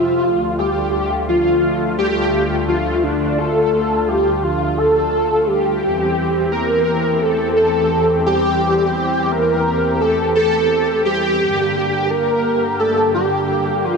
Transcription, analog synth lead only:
Already playing: F4
0.59 G4
1.29 F4
1.98 G4
2.68 F4
3.03 D4
3.38 A4
4.08 G4
4.43 F4
4.78 A4
5.47 G4
6.52 A#4
7.22 A4
7.56 A4
8.26 G4
9.31 A#4
10.01 A4
10.35 A4
11.05 G4
12.10 A#4
12.80 A4
13.15 G4
13.84 F4

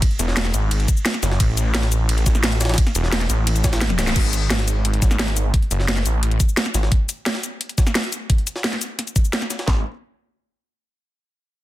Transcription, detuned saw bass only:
0.19 E1
0.54 G#1
1.23 F#1
1.40 A1
2.26 A1
2.95 E1
3.30 A1
4.16 G#1
5.02 G#1
5.71 F#1
6.05 A1
6.74 G#1
9.68 G#1

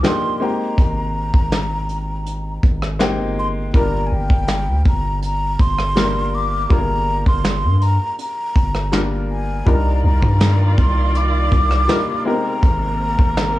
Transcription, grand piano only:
0.03 F3 A#3 D4 D#4 G4
0.40 G#3 A#3 C4 D#4 G4
2.99 G#3 A#3 C4 D#4 G4
3.73 G3 A#3 D4 F4 A#4
5.95 G3 A#3 D4 F4 A#4
6.70 G3 A#3 D4 F4 G#4
6.78 A#4
8.92 G3 A#3 D4 F4 A#4
9.66 G3 D4 D#4 F4 A#4
11.88 G3 D4 D#4 F4 A#4
12.25 G#3 B3 D#4 G4 A#4
12.32 C4

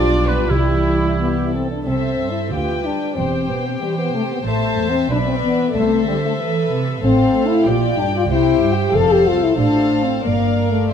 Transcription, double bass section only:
Already playing: B1
0.51 C2
1.87 C2
2.51 D2
3.17 E1
4.46 A1
5.11 B1
5.75 C2
7.03 A1
7.66 A#1
8.30 C2
8.93 F1
9.58 A1
10.24 G1

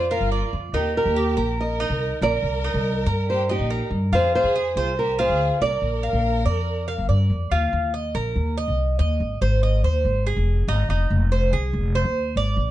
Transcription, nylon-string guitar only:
Already playing: C5
0.11 A#4
0.74 A#4
0.97 A#4
1.61 D#5
2.23 D5
3.30 C5
3.51 G4
4.15 C5
4.35 C5
4.77 G#4
4.99 A#4
5.20 C5
5.62 D5

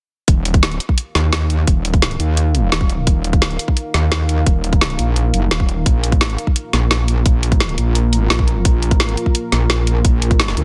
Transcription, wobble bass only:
0.28 D#1
1.15 D#2
1.67 D#1
2.20 D#2
2.72 D#1
3.07 D#1
3.94 D#2
4.46 D#1
4.99 A#1
5.34 F#1
5.51 D#1
5.86 A#1
6.73 A#1
7.26 A#1
7.78 A#1
8.30 A#1
8.65 A#1
9.52 A#1
10.05 A#1
10.57 D2

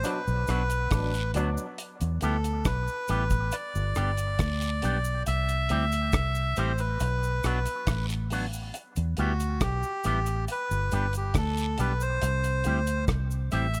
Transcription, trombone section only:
0.04 B2 F#3 D4
0.92 B2 F#3 D4
1.36 B2 F#3 D4

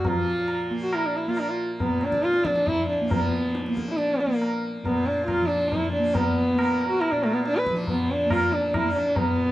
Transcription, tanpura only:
Already playing: A#2 F3 A#3
0.12 F3
0.70 A#3
1.27 A#3
1.85 A#2
2.44 F3
3.01 A#3
3.09 F3
3.68 A#3
4.26 A#3
4.83 A#2
5.40 F3
5.99 A#3
6.55 A#3
7.12 A#2
7.70 F3
8.26 A#3
8.84 A#3
9.40 A#2

